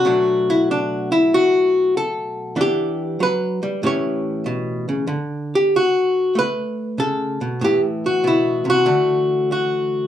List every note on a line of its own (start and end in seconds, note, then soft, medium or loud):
0.00 1.11 F#4 loud
0.05 2.57 B2 medium
0.05 2.55 F#3 soft
0.05 2.56 A3 soft
0.05 0.47 D4 medium
0.50 0.69 E4 medium
0.71 1.11 D4 medium
1.12 1.94 E4 medium
1.34 1.95 F#4 loud
1.97 2.58 A4 medium
2.56 3.19 E3 medium
2.56 3.80 B3 soft
2.56 3.80 D4 soft
2.61 3.22 G4 loud
3.20 3.62 F#3 medium
3.20 3.84 B4 medium
3.63 3.83 G3 medium
3.83 5.06 A2 medium
3.83 5.09 E3 soft
3.83 5.07 C#4 soft
3.83 5.07 G4 soft
3.83 5.10 C#5 medium
4.46 4.88 B2 medium
4.89 5.07 C#3 medium
5.07 6.97 D3 medium
5.55 5.74 G4 medium
5.76 6.37 F#4 medium
6.35 7.61 A3 medium
6.35 6.99 B4 loud
6.98 7.40 C#3 medium
6.98 7.62 A4 medium
7.41 7.61 B2 medium
7.61 8.84 A2 medium
7.61 10.07 E3 soft
7.61 7.80 G4 medium
8.06 8.67 F#4 medium
8.24 8.65 B2 medium
8.24 8.89 E4 medium
8.65 8.86 C3 medium
8.70 9.51 F#4 loud
8.86 10.07 D3 medium
8.86 10.07 A3 soft
9.52 10.07 F#4 medium